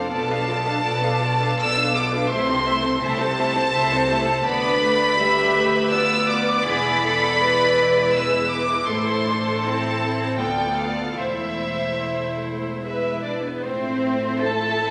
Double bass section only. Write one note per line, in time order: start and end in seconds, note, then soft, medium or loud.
0.11 0.76 B1 medium
0.85 1.50 B1 medium
1.58 2.23 B1 medium
2.30 2.93 C2 loud
3.03 3.66 C2 loud
3.74 4.38 C2 loud
4.45 6.62 D2 medium
6.67 8.85 E1 loud
8.89 10.37 A1 medium
10.38 11.19 D2 medium
11.19 13.39 E1 medium
13.63 14.90 A1 medium